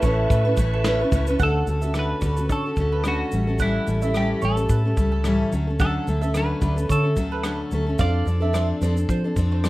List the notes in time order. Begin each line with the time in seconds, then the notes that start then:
Already playing: A4 B4 A5 C#6
0.02 A1 A3 C#4 E4 C#5, kick, shaker
0.06 B4
0.30 A2 B4, kick, shaker
0.45 C#4 E4 B4
0.57 A1 A3 C#4 E4, kick, shaker
0.61 B4
0.74 A4
0.84 A3 C#4 E4 B4, snare, shaker
1.01 C#4 E4 B4
1.12 C#2 A3 C#4 E4, kick, shaker
1.17 B4
1.27 C#4 E4 B4, shaker
1.39 D2 D3 A3 C#4 F#4 A4 F#5, kick, shaker
1.43 A4
1.67 D2 A3 C#4 F#4 A4, shaker
1.81 F#4 A4 E5, shaker
1.86 C#4
1.94 D3 A3 C#4 F#4 A4, cross-stick, shaker
1.99 B4
2.21 D2 A3 C#4 F#4 D5, kick, shaker
2.25 A4
2.36 C#4 F#4 A4, shaker
2.49 D3 A4 C#5, kick, shaker
2.65 C#4 F#4 A4
2.76 D2 A3 C#4 F#4, kick, shaker
2.81 A4
2.92 B4
3.04 D3 A3 C#4 F#4 A4, cross-stick, shaker
3.08 F#4
3.32 A1 G3 A3 C#4 A4, shaker
3.47 G3 A3 C#4 A4
3.59 A2 E3 G3 A3 C#4 E4 A4 F#5, kick, shaker
3.87 A1 G3 A3 C#4 A4, shaker
4.02 G3 A3 C#4 A4 E5, shaker
4.14 A2 E3 G3 A3 C#4 G4 A4, cross-stick, shaker
4.41 A1 G3 A3 C#4 A4 C#5, shaker
4.57 G3 A3 C#4 A4, shaker
4.69 A2 B4, kick, shaker
4.84 G3 A3 C#4 A4
4.96 C#2 G3 A3 C#4 A4, kick, shaker
5.12 A4
5.24 A2 E3 G3 A3 C#4 A4, cross-stick, shaker
5.52 D2 F#3 A3 C#4 A4, shaker
5.67 A3 C#4 A4
5.79 D3 F#3 A3 C#4 A4 F#5, kick, shaker
6.07 D2 F#3 A3 C#4 A4, shaker
6.21 C#4 A4 E5, shaker
6.26 A3
6.34 D3 F#3 A3 C#4 A4 B4, cross-stick, shaker
6.61 D2 F#3 A3 C#4 A4 D5, kick, shaker
6.76 A3 C#4 A4, shaker
6.89 D3 A4 C#5, kick, shaker
7.03 A3 C#4 A4
7.16 D2 F#3 A3 C#4 A4, kick, shaker
7.32 B4
7.43 D3 F#3 A3 C#4 A4, cross-stick, shaker
7.71 D2 F#3 A3 C#4 A4, shaker
7.87 A3 C#4 A4
7.98 F2 F3 C4 D4 A4 D5 F5, kick, shaker
8.25 F2 F3 C4 D4 A4, shaker
8.40 C4 D4 A4 E5
8.53 F3 C4 D4 A4, cross-stick, shaker
8.81 F2 F3 C4 D4 A4 D5, shaker
8.95 C4 D4 A4, shaker
9.09 F3 C5, kick, shaker
9.24 C4 D4 A4
9.36 F2 F3 C4 D4 A4, kick, shaker
9.52 C5
9.64 F3 C4 D4 A4, cross-stick, shaker